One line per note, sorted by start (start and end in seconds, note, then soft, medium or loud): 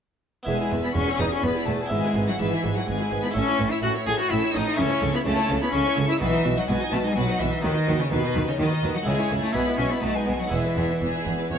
0.43 0.55 E2 medium
0.43 1.85 B3 medium
0.43 1.86 E4 soft
0.43 0.58 B4 medium
0.43 1.87 E5 medium
0.47 0.55 E1 medium
0.47 0.69 E2 medium
0.47 0.81 G#3 medium
0.47 0.59 G#4 medium
0.47 0.81 G#5 medium
0.58 0.72 E4 soft
0.58 0.71 G#4 medium
0.71 0.79 E1 medium
0.71 0.80 E2 medium
0.71 0.93 E2 medium
0.71 0.84 G#4 medium
0.71 0.84 B4 medium
0.82 0.95 B3 medium
0.82 0.96 E4 medium
0.82 0.95 G#4 medium
0.82 0.95 B5 medium
0.95 1.03 E1 medium
0.95 1.17 E2 medium
0.95 1.03 E2 medium
0.95 1.21 C#4 medium
0.95 1.07 G#4 medium
0.95 1.07 B4 medium
0.95 1.19 C#6 loud
1.07 1.20 E4 medium
1.07 1.19 G#4 medium
1.19 1.27 E1 medium
1.19 1.27 E2 medium
1.19 1.41 E2 medium
1.19 1.31 D#4 medium
1.19 1.32 G#4 medium
1.19 1.32 B4 medium
1.19 1.31 D#6 medium
1.31 1.45 C#4 medium
1.31 1.44 E4 soft
1.31 1.43 G#4 medium
1.31 1.43 C#6 medium
1.43 1.51 E1 medium
1.43 1.51 E2 medium
1.43 1.65 E2 medium
1.43 1.67 B3 medium
1.43 1.55 G#4 medium
1.43 1.55 B4 medium
1.43 1.67 B5 medium
1.56 1.68 E4 medium
1.56 1.68 G#4 medium
1.67 1.75 E1 medium
1.67 1.89 E2 medium
1.67 1.76 E2 medium
1.67 1.75 A3 medium
1.67 1.80 G#4 medium
1.67 1.80 B4 medium
1.67 1.91 A5 medium
1.80 1.92 E4 medium
1.80 1.92 G#4 medium
1.86 3.29 B3 medium
1.86 3.29 E4 medium
1.86 3.30 E5 soft
1.91 1.99 G#1 medium
1.91 2.13 G#2 medium
1.91 1.99 G#2 medium
1.91 2.29 G#3 medium
1.91 2.03 G#4 medium
1.91 2.03 B4 medium
1.91 2.27 G#5 medium
2.04 2.16 E4 soft
2.04 2.16 G#4 medium
2.15 2.23 G#1 medium
2.15 2.37 G#2 medium
2.15 2.24 G#2 medium
2.15 2.28 G#4 medium
2.15 2.28 B4 medium
2.28 2.39 F#3 medium
2.28 2.40 E4 medium
2.28 2.40 G#4 medium
2.28 2.39 F#5 medium
2.39 2.48 G#1 medium
2.39 2.61 G#2 medium
2.39 2.48 G#2 medium
2.39 2.75 E3 medium
2.39 2.51 G#4 medium
2.39 2.51 B4 medium
2.39 2.75 E5 loud
2.52 2.64 E4 medium
2.52 2.64 G#4 medium
2.63 2.72 G#1 medium
2.63 2.85 G#2 medium
2.63 2.71 G#2 medium
2.63 2.76 G#4 medium
2.63 2.76 B4 medium
2.75 2.87 F#3 medium
2.75 2.88 E4 medium
2.75 2.88 G#4 medium
2.75 2.87 F#5 medium
2.86 2.96 G#1 medium
2.86 2.95 G#2 medium
2.86 3.09 G#2 medium
2.86 3.22 G#3 medium
2.86 2.99 G#4 medium
2.86 2.99 B4 medium
2.86 3.23 G#5 loud
3.00 3.12 E4 medium
3.00 3.12 G#4 medium
3.11 3.20 G#1 medium
3.11 3.19 G#2 medium
3.11 3.33 G#2 medium
3.11 3.24 G#4 medium
3.11 3.24 B4 medium
3.22 3.27 B3 medium
3.22 3.36 E4 medium
3.22 3.35 G#4 medium
3.22 3.36 B5 loud
3.31 4.72 A3 medium
3.31 4.73 E4 medium
3.31 4.73 E5 medium
3.35 3.44 A1 medium
3.35 3.43 A2 medium
3.35 3.57 A2 medium
3.35 3.73 C#4 loud
3.35 3.47 C#4 medium
3.35 3.47 A4 medium
3.35 3.71 C#6 medium
3.47 3.60 E4 medium
3.47 3.59 C#5 medium
3.58 3.68 A1 medium
3.58 3.67 A2 medium
3.58 3.81 A2 medium
3.58 3.72 C#4 medium
3.58 3.71 A4 medium
3.71 3.83 E4 medium
3.71 3.82 E4 medium
3.71 3.83 C#5 medium
3.71 3.76 E6 medium
3.83 3.92 A1 medium
3.83 3.91 A2 medium
3.83 4.04 A2 medium
3.83 3.95 C#4 medium
3.83 3.91 F#4 medium
3.83 3.94 A4 medium
3.83 3.91 F#6 loud
3.95 4.07 E4 medium
3.95 4.07 C#5 medium
4.06 4.16 A1 medium
4.06 4.14 A2 medium
4.06 4.28 A2 medium
4.06 4.19 C#4 medium
4.06 4.18 G#4 medium
4.06 4.19 A4 medium
4.06 4.18 G#6 medium
4.18 4.31 E4 medium
4.18 4.32 F#4 medium
4.18 4.30 C#5 medium
4.18 4.31 F#6 loud
4.30 4.39 A1 medium
4.30 4.52 A2 medium
4.30 4.38 A2 medium
4.30 4.42 C#4 medium
4.30 4.53 E4 medium
4.30 4.41 A4 medium
4.30 4.55 E6 loud
4.42 4.55 E4 medium
4.42 4.54 C#5 medium
4.54 4.63 A1 medium
4.54 4.62 A2 medium
4.54 4.76 A2 medium
4.54 4.67 C#4 medium
4.54 4.79 D#4 medium
4.54 4.67 A4 medium
4.54 4.79 D#6 medium
4.67 4.79 E4 medium
4.67 4.79 C#5 medium
4.74 6.15 A3 medium
4.74 5.13 C#4 loud
4.74 6.15 E4 medium
4.74 6.16 E5 medium
4.78 4.86 C#2 medium
4.78 4.86 C#3 medium
4.78 5.00 C#3 medium
4.78 4.90 C#4 medium
4.78 4.89 A4 medium
4.78 5.14 C#6 loud
4.89 5.03 E4 medium
4.89 5.02 C#5 medium
5.01 5.10 C#2 medium
5.01 5.24 C#3 medium
5.01 5.10 C#3 medium
5.01 5.14 C#4 medium
5.01 5.13 A4 medium
5.13 5.18 B3 medium
5.13 5.26 E4 medium
5.13 5.25 C#5 medium
5.13 5.20 B5 medium
5.25 5.34 C#2 medium
5.25 5.47 C#3 medium
5.25 5.33 C#3 medium
5.25 5.60 A3 medium
5.25 5.37 C#4 medium
5.25 5.36 A4 medium
5.25 5.62 A5 loud
5.36 5.50 E4 medium
5.36 5.49 C#5 medium
5.49 5.58 C#2 medium
5.49 5.71 C#3 medium
5.49 5.57 C#3 medium
5.49 5.62 C#4 medium
5.49 5.61 A4 medium
5.61 5.73 B3 medium
5.61 5.74 E4 medium
5.61 5.73 C#5 medium
5.61 5.74 B5 medium
5.72 5.82 C#2 medium
5.72 5.94 C#3 medium
5.72 5.81 C#3 medium
5.72 6.07 C#4 medium
5.72 5.85 C#4 medium
5.72 5.84 A4 medium
5.72 6.09 C#6 loud
5.85 5.98 E4 medium
5.85 5.97 C#5 medium
5.96 6.06 C#2 medium
5.96 6.18 C#3 medium
5.96 6.05 C#3 medium
5.96 6.10 C#4 medium
5.96 6.09 A4 medium
6.08 6.13 E4 medium
6.08 6.21 E4 medium
6.08 6.21 C#5 medium
6.08 6.15 E6 loud
6.18 6.29 B1 medium
6.18 6.42 B2 medium
6.18 6.29 B2 medium
6.18 6.56 E3 loud
6.18 7.58 D#4 medium
6.18 6.32 F#4 medium
6.18 7.59 B4 medium
6.22 6.32 B4 medium
6.22 6.57 E5 loud
6.33 6.45 D#4 medium
6.33 6.45 D#5 medium
6.44 6.53 B1 medium
6.44 6.53 B2 medium
6.44 6.66 B2 medium
6.44 6.57 F#4 medium
6.44 6.56 B4 medium
6.57 6.62 F#3 medium
6.57 6.69 D#4 medium
6.57 6.68 D#5 medium
6.57 6.69 F#5 medium
6.68 6.76 B1 medium
6.68 6.90 B2 medium
6.68 6.77 B2 medium
6.68 6.76 G#3 medium
6.68 6.80 F#4 medium
6.68 6.79 B4 medium
6.68 6.93 G#5 loud
6.81 6.92 D#4 medium
6.81 6.92 D#5 medium
6.92 7.01 B1 medium
6.92 7.14 B2 medium
6.92 7.00 B2 medium
6.92 7.02 A3 medium
6.92 7.04 F#4 medium
6.92 7.04 B4 medium
6.92 7.04 A5 loud
7.03 7.15 G#3 medium
7.03 7.16 D#4 medium
7.03 7.17 D#5 medium
7.03 7.17 G#5 loud
7.14 7.24 B1 medium
7.14 7.37 B2 medium
7.14 7.25 B2 medium
7.14 7.41 F#3 medium
7.14 7.27 F#4 medium
7.14 7.28 B4 medium
7.14 7.40 F#5 loud
7.28 7.40 D#4 medium
7.28 7.41 D#5 medium
7.39 7.48 B1 medium
7.39 7.61 B2 medium
7.39 7.49 B2 medium
7.39 7.63 E3 medium
7.39 7.52 F#4 medium
7.39 7.52 B4 medium
7.39 7.64 E5 loud
7.52 7.64 D#4 medium
7.52 7.64 D#5 medium
7.61 7.72 D#2 medium
7.61 8.00 D#3 loud
7.61 7.85 D#3 medium
7.61 7.72 D#3 medium
7.61 9.01 D#4 medium
7.61 7.75 F#4 medium
7.61 9.02 B4 medium
7.61 7.75 B4 medium
7.61 7.99 D#5 loud
7.75 7.87 D#4 medium
7.75 7.87 D#5 medium
7.87 7.95 D#2 medium
7.87 7.96 D#3 medium
7.87 8.09 D#3 medium
7.87 8.00 F#4 medium
7.87 7.99 B4 medium
7.99 8.13 C#3 medium
7.99 8.11 D#4 medium
7.99 8.12 C#5 loud
7.99 8.11 D#5 medium
8.11 8.19 D#2 medium
8.11 8.46 B2 medium
8.11 8.20 D#3 medium
8.11 8.33 D#3 medium
8.11 8.23 F#4 medium
8.11 8.22 B4 medium
8.11 8.47 B4 loud
8.23 8.35 D#4 medium
8.23 8.35 D#5 medium
8.34 8.42 D#2 medium
8.34 8.57 D#3 medium
8.34 8.44 D#3 medium
8.34 8.47 F#4 medium
8.34 8.47 B4 medium
8.47 8.57 C#3 medium
8.47 8.59 D#4 medium
8.47 8.59 C#5 medium
8.47 8.59 D#5 medium
8.58 8.66 D#2 medium
8.58 8.96 D#3 medium
8.58 8.81 D#3 medium
8.58 8.67 D#3 medium
8.58 8.70 F#4 medium
8.58 8.70 B4 medium
8.58 8.94 D#5 loud
8.71 8.83 D#4 medium
8.71 8.83 D#5 medium
8.83 8.91 D#2 medium
8.83 8.91 D#3 medium
8.83 9.05 D#3 medium
8.83 8.95 F#4 medium
8.83 8.95 B4 medium
8.94 9.04 F#3 medium
8.94 9.07 D#4 medium
8.94 9.07 D#5 medium
8.94 9.07 F#5 medium
9.03 9.14 C#2 medium
9.03 9.14 C#3 medium
9.03 9.50 G#3 medium
9.03 9.41 G#3 medium
9.03 9.51 E4 medium
9.03 9.53 G#4 medium
9.03 9.43 G#5 loud
9.07 9.29 C#3 medium
9.07 9.18 C#4 medium
9.07 9.18 G#4 medium
9.19 9.31 E4 medium
9.19 9.31 C#5 medium
9.30 9.39 C#2 medium
9.30 9.38 C#3 medium
9.30 9.53 C#3 medium
9.30 9.43 C#4 medium
9.30 9.43 G#4 medium
9.41 9.56 A3 medium
9.41 9.55 E4 medium
9.41 9.55 C#5 medium
9.41 9.55 A5 medium
9.52 9.62 B1 medium
9.52 9.63 B2 medium
9.52 10.00 G#3 medium
9.52 9.79 B3 medium
9.52 9.66 B3 medium
9.52 10.01 E4 medium
9.52 10.01 G#4 medium
9.52 9.66 G#4 medium
9.52 9.78 B5 loud
9.56 9.77 B2 medium
9.67 9.79 E4 medium
9.67 9.79 B4 medium
9.77 9.86 B1 medium
9.77 9.87 B2 medium
9.77 10.01 B2 medium
9.77 9.91 B3 medium
9.77 9.91 C#4 medium
9.77 9.91 G#4 medium
9.77 9.90 C#6 medium
9.90 10.02 B3 medium
9.90 10.03 E4 medium
9.90 10.04 B4 medium
9.90 10.03 B5 medium
10.00 10.11 B1 medium
10.00 10.11 B2 medium
10.00 10.25 B2 medium
10.00 10.17 A3 medium
10.00 10.15 B3 medium
10.00 10.49 D#4 medium
10.00 10.14 F#4 medium
10.00 10.49 B4 medium
10.00 10.15 A5 loud
10.15 10.39 G#3 medium
10.15 10.28 D#4 medium
10.15 10.28 B4 medium
10.15 10.40 G#5 medium
10.27 10.35 B1 medium
10.27 10.35 B2 medium
10.27 10.49 B2 medium
10.27 10.40 B3 medium
10.27 10.40 F#4 medium
10.39 10.44 F#3 medium
10.39 10.53 D#4 soft
10.39 10.52 B4 medium
10.39 10.52 F#5 medium
10.47 11.58 G#3 medium
10.47 11.58 E4 medium
10.47 11.58 B4 medium
10.47 11.51 E5 medium
10.52 10.60 E1 medium
10.52 10.60 E2 medium
10.52 10.74 E2 medium
10.52 11.49 E3 medium
10.52 10.64 B3 medium
10.52 10.64 G#4 medium
10.65 10.77 E4 medium
10.65 10.77 B4 medium
10.77 10.85 E1 medium
10.77 10.85 E2 medium
10.77 11.00 E2 medium
10.77 10.90 B3 medium
10.77 10.89 G#4 medium
10.90 11.02 E4 medium
10.90 11.02 B4 medium
11.02 11.10 E1 medium
11.02 11.24 E2 medium
11.02 11.10 E2 medium
11.02 11.14 B3 medium
11.02 11.36 G#4 medium
11.15 11.27 E4 medium
11.26 11.34 E1 medium
11.26 11.48 E2 medium
11.26 11.34 E2 medium
11.26 11.39 B3 medium
11.39 11.52 E4 medium
11.39 11.51 B4 medium
11.51 11.58 E1 medium
11.51 11.58 E2 medium
11.51 11.58 B3 medium
11.51 11.58 C#5 medium